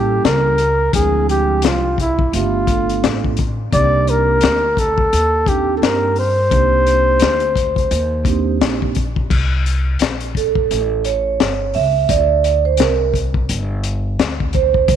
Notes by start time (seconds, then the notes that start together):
Already playing: A1 G3 A#3 C#4 E4 G4 A4
0.24 C#2 A#4, snare, closed hi-hat
0.58 closed hi-hat
0.92 D2 F3 G#3 C4 D4 E4 G#4, kick, closed hi-hat
1.29 G4, closed hi-hat
1.62 C2 F4, snare, closed hi-hat
1.98 E4, kick, closed hi-hat
2.19 kick
2.32 G1 A3 B3 D4 F4 G4, closed hi-hat
2.67 A3 B3 D4 F4 A4, kick, closed hi-hat
2.89 closed hi-hat
3.04 A1, snare, closed hi-hat
3.24 kick
3.37 kick, closed hi-hat
3.71 C2 A#3 C4 D4 D#4 G4 D5, kick, closed hi-hat
4.07 A#4, closed hi-hat
4.41 D2, snare, closed hi-hat
4.77 A4, kick, closed hi-hat
4.98 kick
5.13 D#2, closed hi-hat
5.46 A#3 C4 D4 D#4 G4, kick, closed hi-hat
5.77 A4
5.82 G2 A#4, snare, closed hi-hat
6.16 C5, open hi-hat
6.50 C2 A#3 C4 D4 D#4 G4, kick, closed hi-hat
6.87 closed hi-hat
7.19 D2, snare, closed hi-hat
7.40 closed hi-hat
7.56 kick, closed hi-hat
7.76 kick, closed hi-hat
7.91 D#2, closed hi-hat
8.24 A#3 C4 D4 D#4 G4, kick, closed hi-hat
8.61 A#1, snare, closed hi-hat
8.82 kick
8.95 kick, closed hi-hat
9.16 kick
9.30 C2, kick, crash
9.66 closed hi-hat
9.99 A#1, snare, closed hi-hat
10.20 closed hi-hat
10.35 A4, kick, closed hi-hat
10.55 kick
10.71 A1, closed hi-hat
11.05 C#5, closed hi-hat
11.40 G1, snare, closed hi-hat
11.74 C#2 E5, open hi-hat
12.09 D2 D5, kick, closed hi-hat
12.44 closed hi-hat
12.65 C5
12.77 C2 A#4, snare, closed hi-hat
13.14 kick, closed hi-hat
13.34 kick
13.49 G1, closed hi-hat
13.84 closed hi-hat
14.19 D2, snare, closed hi-hat
14.40 kick
14.53 C5, kick, closed hi-hat
14.74 kick
14.88 C2, kick, closed hi-hat